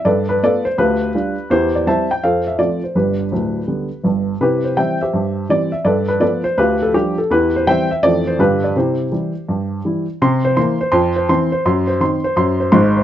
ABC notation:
X:1
M:4/4
L:1/8
Q:"Swing" 1/4=165
K:C
V:1 name="Upright piano"
[ABd] B [ABd] c [FGB]4 | [EGc] d [cea] g [Acf] e d c | [DGB]6 z2 | [EGB] c [ceg] [Gce]3 d e |
[ABd] B [ABd] c [FGB] A G A | [EGB] c [ceg] e d c [FGB] d | [EGc]6- [EGc] z | c' c c' c c' c c' c |
c' c c' c c' c c' c |]
V:2 name="Upright piano" clef=bass
G,,2 [A,B,F]2 D,,2 [G,DF]2 | E,,2 [G,CE]2 F,,2 [F,A,C]2 | [G,,,G,,]2 [D,,,D,,]2 [D,G,B,]2 [G,,,G,,]2 | C,2 [E,G,C]2 G,,2 [E,G,C]2 |
G,,2 [F,A,B,]2 D,,2 [F,G,D]2 | E,,2 [E,G,C]2 [F,,E,A,C]2 [G,,D,G,]2 | C,2 [E,G,E]2 G,,2 [E,G,E]2 | C,2 [E,_B,]2 F,,2 [E,C]2 |
_G,,2 [_E,C]2 G,,2 [_A,,,_A,,]2 |]